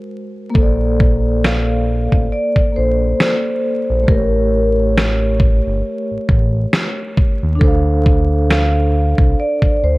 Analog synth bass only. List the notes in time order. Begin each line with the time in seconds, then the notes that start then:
0.56 A#1
2.13 A1
2.57 A#1
2.77 A#1
3.90 A#1
4.09 A1
5.67 G1
6.11 A1
6.30 A1
7.43 D#2
7.62 D2
9.19 C2
9.63 D2
9.83 D2